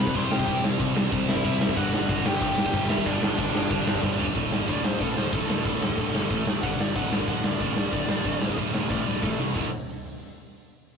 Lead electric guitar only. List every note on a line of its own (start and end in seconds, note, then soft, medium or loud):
0.00 0.14 B4 medium
0.00 0.15 B5 medium
0.15 0.30 C5 medium
0.15 0.30 C6 loud
0.31 0.61 G4 medium
0.31 0.61 G5 medium
1.29 1.73 E4 medium
1.29 1.74 E5 medium
1.77 2.22 F#4 medium
1.77 2.22 F#5 loud
2.26 2.86 G4 medium
2.26 2.89 G5 loud
2.89 3.04 E4 medium
2.89 3.06 E5 loud
3.05 3.98 D4 medium
3.05 3.98 D5 medium
4.68 4.83 D5 medium
4.85 5.00 C5 medium
5.01 5.17 A4 loud
5.17 5.32 C5 medium
5.33 5.47 A4 medium
5.48 6.43 A4 loud
6.63 6.78 F#5 loud
6.81 6.95 D5 medium
6.96 7.11 F#5 loud
7.13 7.28 D5 medium
7.29 7.44 F#5 medium
7.45 7.60 D5 medium
7.62 8.56 D5 loud
8.91 9.22 D5 loud
9.23 9.39 A4 medium